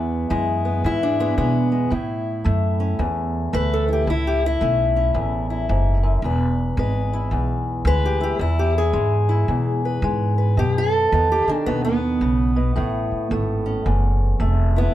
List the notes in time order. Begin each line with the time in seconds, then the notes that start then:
Already playing: E2 B3 E4
0.30 F#2 G#3 E4
0.65 B3
0.84 E2 G#2 E4
1.03 D4
1.20 G#3 B3
1.38 B2 G#3 B3
1.72 G#3
1.90 A2 E4
2.44 F#2 A3
2.80 C#4
2.99 E2
3.53 D2 A3 B4
3.74 A4
3.88 E4
3.93 G4
4.07 C#2 A2 E4
4.27 G4
4.46 E4
4.61 B1 A3 C#4
4.96 C#4
5.14 A1 E2
5.50 E4
5.69 F#1 G#2
6.03 F#2
6.22 E1 E2 B4
6.77 G#1 G#3 B4
7.13 E4
7.31 B1 E2
7.85 D2 G#3 B4
8.06 G4
8.21 E4 G4
8.39 E2 E4
8.59 G4
8.78 G#4
8.93 G#2 G#3
9.29 E4
9.48 E2 B2
9.85 B4
10.02 G#2 G#3
10.38 B4
10.57 F#2 B2 G4
10.78 A4
11.12 E2 D#3 B3
11.32 G4
11.47 D#3 D4, muted upright bass stroke
11.59 G4
11.66 D#2 B2 B3
11.85 B3
12.21 B1 C#3
12.56 B2
12.76 A1 A2 A3
13.11 muted upright bass stroke
13.31 G#1 A3
13.66 C#4
13.86 F#1 E2
14.40 F1 A3
14.76 B3 E4